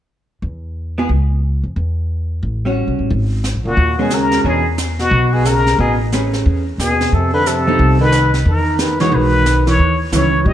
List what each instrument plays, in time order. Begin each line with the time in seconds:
0.42 upright bass E2
0.98 hollow-body jazz guitar B3 E4 G#4
1.09 upright bass C#2
1.63 upright bass F2
1.76 upright bass E2
2.43 upright bass A1
2.65 hollow-body jazz guitar G3 C#4 F#4
2.87 upright bass B1
2.99 upright bass A1
3.10 upright bass G#1, brush sweep, kick
3.44 snare, hi-hat pedal
3.55 upright bass A#1
3.65 upright bass F#1, tenor saxophone A#2, muted trumpet F#4
3.77 upright bass D#2, brush sweep, kick
3.98 tenor saxophone B2, hollow-body jazz guitar G#3 C#4 F#4, muted trumpet G#4
4.10 tenor saxophone C#3, muted trumpet A#4, snare, hi-hat pedal
4.32 snare
4.44 upright bass E2, tenor saxophone B2, hollow-body jazz guitar E3 D4 G#4 C#5, muted trumpet G#4, brush sweep, kick
4.78 snare, hi-hat pedal
4.99 tenor saxophone B2, muted trumpet F#4, snare
5.11 upright bass B1, brush sweep, kick
5.33 tenor saxophone B2, muted trumpet G#4
5.45 tenor saxophone C#3, muted trumpet A#4, snare, hi-hat pedal
5.67 snare
5.78 upright bass A1, tenor saxophone B2, muted trumpet G#4, brush sweep, kick
6.12 hollow-body jazz guitar A3 C#4 G#4 B4, snare, hi-hat pedal
6.33 snare
6.46 upright bass E2, brush sweep, kick
6.78 upright bass D#2, tenor saxophone B2, muted trumpet G#4, snare, hi-hat pedal
7.01 snare
7.12 upright bass F2, tenor saxophone C3, muted trumpet A4, brush sweep, kick
7.33 tenor saxophone D3, muted trumpet B4
7.46 tenor saxophone C3, muted trumpet A4, snare, hi-hat pedal
7.67 hollow-body jazz guitar F3 B3 D#4 A4
7.79 upright bass C2, brush sweep, kick
8.00 tenor saxophone D#3, muted trumpet B4
8.12 snare, hi-hat pedal
8.34 snare
8.45 upright bass E2, tenor saxophone D#3, muted trumpet A#4, brush sweep, kick
8.79 tenor saxophone D#3, muted trumpet B4, snare, hi-hat pedal
8.99 tenor saxophone E3, hollow-body jazz guitar E3 G#3 D#4 F#4, muted trumpet C#5, snare
9.11 upright bass B1, tenor saxophone D#3, muted trumpet B4, brush sweep, kick
9.46 snare, hi-hat pedal
9.66 tenor saxophone E3, muted trumpet C#5, snare
9.79 upright bass D#2, brush sweep, kick
10.12 upright bass C#2, hollow-body jazz guitar D#3 G3 C#4 E4, tenor saxophone E3, muted trumpet C#5, snare, hi-hat pedal
10.45 upright bass A#2, tenor saxophone G3, muted trumpet D#5, brush sweep, kick